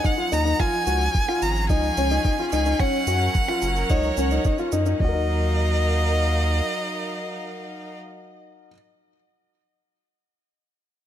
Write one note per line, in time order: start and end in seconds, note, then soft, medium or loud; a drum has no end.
0.00 0.60 F#3 medium
0.00 1.48 D#4 medium
0.00 1.48 A#4 medium
0.00 2.80 F#5 loud
0.04 0.12 D#4 medium
0.04 0.34 F#5 loud
0.04 kick loud
0.04 shaker soft
0.18 0.26 F4 medium
0.18 shaker soft
0.32 0.54 D#2 medium
0.32 0.40 D#4 medium
0.32 0.61 A#5 loud
0.32 shaker medium
0.45 0.53 D#4 medium
0.45 shaker soft
0.59 2.80 F3 medium
0.59 0.75 F4 loud
0.59 1.44 G#5 loud
0.59 kick loud
0.59 percussion blips medium
0.59 shaker soft
0.73 shaker soft
0.81 5.00 C#4 medium
0.87 1.09 C#2 loud
0.87 1.03 F#4 medium
0.87 shaker medium
1.01 shaker soft
1.09 3.68 G#4 medium
1.15 kick loud
1.15 shaker soft
1.29 1.44 F4 medium
1.29 percussion blips medium
1.29 shaker soft
1.42 1.71 G#1 medium
1.42 1.69 A#5 loud
1.42 shaker medium
1.56 shaker soft
1.69 1.91 C#2 medium
1.69 1.85 D#4 loud
1.69 2.48 G#5 loud
1.69 kick medium
1.69 shaker soft
1.83 shaker soft
1.97 2.19 C#2 loud
1.97 2.06 C#4 medium
1.97 shaker medium
2.11 2.19 D#4 medium
2.11 shaker soft
2.25 2.33 D#4 loud
2.25 kick loud
2.25 shaker soft
2.38 2.47 F4 medium
2.38 shaker soft
2.52 2.74 C#2 medium
2.52 2.60 D#4 medium
2.52 2.82 G#5 loud
2.52 shaker medium
2.66 2.74 D#4 medium
2.66 shaker soft
2.79 4.99 F#3 medium
2.79 2.96 C#4 loud
2.79 3.91 F#5 loud
2.79 kick loud
2.79 percussion blips medium
2.79 shaker soft
2.93 shaker soft
3.07 3.29 F#2 loud
3.07 3.23 F#4 medium
3.07 5.00 A#4 medium
3.07 shaker medium
3.21 shaker soft
3.35 kick loud
3.35 shaker soft
3.48 3.64 F4 medium
3.48 percussion blips medium
3.48 shaker soft
3.62 3.84 F#1 medium
3.62 5.01 F#5 medium
3.62 shaker medium
3.76 shaker soft
3.89 4.12 C#2 medium
3.89 4.06 D#4 loud
3.89 4.72 C#5 medium
3.89 kick loud
3.89 shaker soft
4.03 shaker soft
4.17 4.39 C#2 medium
4.17 4.25 C#4 medium
4.17 shaker medium
4.31 4.39 D#4 medium
4.31 shaker soft
4.44 4.53 D#4 medium
4.44 kick loud
4.44 shaker soft
4.58 4.67 F4 medium
4.58 shaker soft
4.72 4.94 F#2 medium
4.72 4.80 D#4 medium
4.72 shaker medium
4.86 4.94 D#4 medium
4.86 shaker soft
5.00 6.61 D#2 medium
5.00 7.96 F#3 medium
5.00 8.67 D#4 medium
5.00 7.97 D#5 loud
5.00 kick loud
5.04 8.68 F#4 medium
5.08 7.96 D#4 medium
5.08 8.70 A#4 medium
5.12 8.73 D#5 medium
5.17 7.96 A#4 medium
5.25 7.96 F5 medium